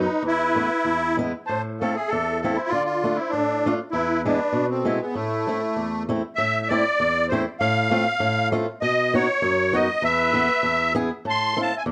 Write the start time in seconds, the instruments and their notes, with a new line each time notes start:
Already playing: trumpet B4
0.00 accordion D#4
0.23 steel-string acoustic guitar E2, trumpet B4
0.27 accordion E4
0.55 steel-string acoustic guitar A3 B3 E4
0.85 steel-string acoustic guitar E2
1.17 steel-string acoustic guitar G#3 B3 E4
1.46 steel-string acoustic guitar A2, accordion C5, trumpet A5
1.81 steel-string acoustic guitar A3 C4 E4, accordion A4, trumpet F5
1.95 accordion G#4, trumpet E5
2.08 accordion A4, trumpet E5
2.13 steel-string acoustic guitar E2
2.41 steel-string acoustic guitar A3 C4 E4, accordion A4, trumpet F5
2.54 accordion E4, trumpet C5
2.68 accordion F4
2.72 steel-string acoustic guitar D3, trumpet D5
2.85 accordion F4, trumpet D5
3.04 steel-string acoustic guitar A3 D4 F4
3.15 accordion E4
3.21 trumpet C5
3.30 steel-string acoustic guitar A2, accordion D4
3.36 trumpet A4
3.66 steel-string acoustic guitar A3 D4 F4
3.91 steel-string acoustic guitar E2, accordion E4, trumpet B4
4.25 steel-string acoustic guitar G#3 B3 E4, accordion D4
4.29 trumpet B4
4.53 steel-string acoustic guitar B2
4.70 accordion C4, trumpet A4
4.85 steel-string acoustic guitar G#3 B3 E4
5.00 accordion B3, trumpet G#4
5.14 steel-string acoustic guitar A2, accordion A3, trumpet E4
5.47 steel-string acoustic guitar A3 C4 E4
5.76 steel-string acoustic guitar E2
6.09 steel-string acoustic guitar A3 C4 E4
6.36 steel-string acoustic guitar A2, accordion E5
6.62 accordion E5
6.69 steel-string acoustic guitar A3 C4 E4, accordion D5
7.00 steel-string acoustic guitar E2
7.29 steel-string acoustic guitar A3 C4, accordion C5
7.33 steel-string acoustic guitar E4
7.60 steel-string acoustic guitar A2, accordion F5
7.91 steel-string acoustic guitar A3 C4 F4
8.20 steel-string acoustic guitar A2
8.52 steel-string acoustic guitar A3 C4 F4
8.82 steel-string acoustic guitar B2, accordion D#5
9.14 steel-string acoustic guitar B3 D#4 F#4, accordion C#5
9.42 steel-string acoustic guitar F#2
9.73 steel-string acoustic guitar B3 D#4 F#4, accordion D#5
10.02 steel-string acoustic guitar E2, trumpet B4, accordion E5
10.33 steel-string acoustic guitar B3 E4 A4
10.63 steel-string acoustic guitar E2
10.95 steel-string acoustic guitar B3 E4 G#4
11.25 steel-string acoustic guitar A2, trumpet A5
11.30 accordion C6
11.57 steel-string acoustic guitar C4 E4 A4, trumpet F5
11.62 accordion A5
11.76 trumpet E5, accordion G#5
11.86 steel-string acoustic guitar E2